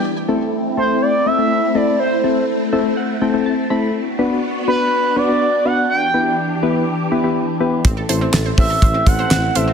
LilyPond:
<<
  \new Staff \with { instrumentName = "Analog synth lead" } { \time 4/4 \key a \dorian \tempo 4 = 123 r4. c''8 d''8 e''4 d''8 | c''4 r2. | r4. b'4 d''4 fis''8 | g''4 r2. |
r4. e''4 fis''4 e''8 | }
  \new Staff \with { instrumentName = "Synth pluck" } { \time 4/4 \key a \dorian r1 | r1 | r1 | r1 |
c'16 a'16 c''16 c'16 a'16 c''16 c'16 a'16 c''16 c'16 a'16 c''16 c'16 r16 c''16 c'16 | }
  \new Staff \with { instrumentName = "Synth keys" } { \time 4/4 \key a \dorian << { r1 | r4. e''8 fis''8 g''8 a''8 b''8 | r1 | r1 |
r1 | } \\ { r8 <a c' e' a'>8 r8 <a c' e' a'>8 r8 <a c' e' a'>16 <a c' e' a'>8 r16 <a c' e' a'>8 | r8 <a c' e' a'>8 r8 <a c' e' a'>8 r8 <a c' e' a'>16 <a c' e' a'>8 r16 <a c' e' a'>8 | r8 <b d' fis' b'>8 r8 <b d' fis' b'>8 r8 <b d' fis' b'>16 <b d' fis' b'>8 r16 <b d' fis' b'>8 | r8 <b e' g' b'>8 r8 <b e' g' b'>8 r8 <b e' g' b'>16 <b e' g' b'>8 r16 <b e' g' b'>8 |
r8 <c' e' a' c''>8 r8 <c' e' a' c''>8 r8 <c' e' a' c''>16 <c' e' a' c''>8 r16 <c' e' a' c''>8 | } >> }
  \new Staff \with { instrumentName = "String machine" } { \time 4/4 \key a \dorian << { <a e'>1~ | <a e'>1 | <b fis'>1 | <e g'>1 |
<a e'>1 | } \\ { c'1~ | c'1 | d'1~ | d'1 |
c'1 | } >> }
  \new Staff \with { instrumentName = "Tuba" } { \clef bass \time 4/4 \key a \dorian r1 | r1 | r1 | r1 |
a,,8 a,,8 a,,8 a,,8 a,,8 a,,8 a,,8 a,,8 | }
  \new DrumStaff \with { instrumentName = "Drums" } \drummode { \time 4/4 r4 r4 r4 r4 | r4 r4 r4 r4 | r4 r4 r4 r4 | r4 r4 r4 r4 |
<hh bd>8 hh8 <hc hh sn>8 <hho bd>8 <hh bd>8 <hh bd>8 <hc hh sn>8 hh8 | }
>>